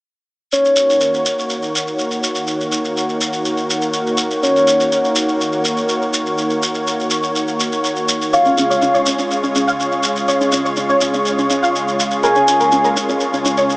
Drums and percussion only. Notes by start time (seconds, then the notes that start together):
0.52 shekere
0.65 shekere
0.76 shekere
0.90 shekere
1.01 shekere
1.14 shekere
1.26 shekere
1.39 shekere
1.50 shekere
1.63 shekere
1.75 shekere
1.87 shekere
1.99 shekere
2.11 shekere
2.23 shekere
2.35 shekere
2.47 shekere
2.61 shekere
2.72 shekere
2.85 shekere
2.97 shekere
3.09 shekere
3.21 shekere
3.33 shekere
3.45 shekere
3.57 shekere
3.70 shekere
3.82 shekere
3.93 shekere
4.07 shekere
4.17 shekere
4.31 shekere
4.43 shekere
4.56 shekere
4.67 shekere
4.80 shekere
4.92 shekere
5.04 shekere
5.16 shekere
5.28 shekere
5.41 shekere
5.52 shekere
5.65 shekere
5.77 shekere
5.89 shekere
6.02 shekere
6.14 shekere
6.26 shekere
6.38 shekere
6.50 shekere
6.63 shekere
6.74 shekere
6.87 shekere
7.00 shekere
7.10 shekere
7.23 shekere
7.36 shekere
7.48 shekere
7.60 shekere
7.72 shekere
7.84 shekere
7.96 shekere
8.08 shekere
8.22 shekere
8.33 shekere
8.45 shekere
8.58 shekere
8.71 shekere
8.82 shekere
8.94 shekere
9.06 shekere
9.19 shekere
9.31 shekere
9.43 shekere
9.55 shekere
9.68 shekere
9.80 shekere
9.92 shekere
10.03 shekere
10.16 shekere
10.28 shekere
10.41 shekere
10.52 shekere
10.66 shekere
10.76 shekere
10.89 shekere
11.01 shekere
11.14 shekere
11.25 shekere
11.38 shekere
11.50 shekere
11.63 shekere
11.75 shekere
11.88 shekere
11.99 shekere
12.11 shekere
12.23 shekere
12.35 shekere
12.48 shekere
12.60 shekere
12.72 shekere
12.84 shekere
12.96 shekere
13.09 shekere
13.20 shekere
13.33 shekere
13.45 shekere
13.57 shekere
13.70 shekere